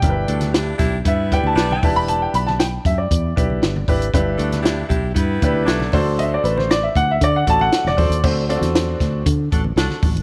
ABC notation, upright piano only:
X:1
M:4/4
L:1/8
Q:1/4=117
K:Dmix
V:1 name="Upright piano"
[DEG_B=B]3 z2 [DEGB] z [DEGB]- | [DEGB]2 z3 [DEGB] z [DEGB] | [DEGB]3 z2 [DEGB] z [DFAc]- | [DFAc]2 z3 [DFAd] z [DFAc] |
[CDFAc] [CD=F^FAd]3 z4 |]
V:2 name="Upright piano" clef=bass
G,,3 z4 E,- | E,2 z6 | G,,3 z4 D,- | D,2 z6 |
D,3 z4 z |]